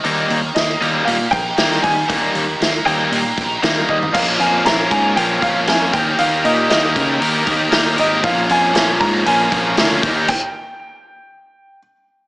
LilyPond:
<<
  \new Staff \with { instrumentName = "Upright piano" } { \time 4/4 \key ees \mixolydian \tempo 4 = 117 r4 ees''4 f''8 g''4 aes''8~ | aes''4. g''4. r8 ees''8 | f''8 aes''8 bes''8 aes''8 g''8 f''8 aes''8 g''8 | f''8 ees''8 ees''2~ ees''8 ees''8 |
f''8 aes''4 bes''8 aes''4. r8 | g''2. r4 | }
  \new Staff \with { instrumentName = "Overdriven electric guitar" } { \time 4/4 \key ees \mixolydian <ees g bes ees'>8 r4 <ees g bes ees'>8 r4 <ees g bes ees'>8 r8 | <ees g bes ees'>8 r4 <ees g bes ees'>8 r4 <ees g bes ees'>8 r8 | <bes, f bes des' f' bes'>8 <bes des' f' bes'>8 <bes des' f' bes'>4 <bes, f bes des' f' bes'>8 <bes des' f' bes'>8 <bes des' f' bes'>8 <ees bes ees' g' bes'>8 | <ees bes ees' g' bes'>8 <ees' g' bes'>8 <bes ees' g' bes'>4 <ees bes ees' g' bes'>8 <ees' g' bes'>8 <bes ees' g' bes'>8 <ees' g' bes'>8 |
<bes, f bes des' f'>8 <bes des' f'>8 <f bes des' f'>4 <bes, f bes des' f'>8 <bes des' f'>8 <f bes des' f'>8 <ees bes ees' g'>8 | r1 | }
  \new Staff \with { instrumentName = "Overdriven electric guitar" } { \time 4/4 \key ees \mixolydian ees4 bes8 g'8 bes8 ees'8 bes8 g8 | ees4 bes8 g'8 bes8 ees'8 bes8 g8 | <bes, f bes des' f' bes'>4 <bes des' f' bes'>8 <bes des' f' bes'>8 <bes, f bes des' f' bes'>8 <bes des' f' bes'>4 <ees g bes g' bes'>8 | <ees g bes g' bes'>4 <g bes g' bes'>8 <g g' bes'>8 <ees g bes g' bes'>8 <g g' bes'>4 <g g' bes'>8 |
<bes, f bes des' f' bes'>4 <bes des' f' bes'>8 <bes des' f' bes'>8 <bes, f bes des' f' bes'>8 <bes des' f' bes'>4 <ees g bes g' bes'>8 | r1 | }
  \new Staff \with { instrumentName = "Fingered electric bass" } { \clef bass \time 4/4 \key ees \mixolydian ees,8 ees,8 ees,8 ees,8 bes,8 bes,,8 ees8 ees8 | ees,8 ees,8 ees,8 ees,8 bes,8 bes,,8 ees8 ees8 | bes,,8 f,8 bes,,8 aes,8 bes,,8 bes,,8 f,8 ees,8 | ees,8 bes,8 ees,8 des8 ees,8 ees,8 ees,8 aes,,8 |
bes,,8 f,8 bes,,8 aes,8 bes,,8 bes,,8 d,8 ees,8 | r1 | }
  \new DrumStaff \with { instrumentName = "Drums" } \drummode { \time 4/4 hho8 hho8 <hho sn>8 hho8 hho8 <hho bd>8 <hho sn>16 sn16 <hho bd>8 | <hho bd>8 hho8 <hho sn>8 hho8 hho8 <hho bd>8 <hho sn>8 bd16 tomfh16 | <cymc bd>8 hho8 <hho sn>8 <hho bd>8 hho8 <hho bd>8 <hho sn>8 <hho bd>8 | hho8 hho8 <hho sn>8 <hho bd>8 hho8 <hho bd>8 <hho sn>8 hho8 |
<hho bd>8 hho8 <hho sn>8 <hho bd>8 hho8 <hho bd>8 <hho sn>8 <hho bd>8 | <cymc bd>4 r4 r4 r4 | }
>>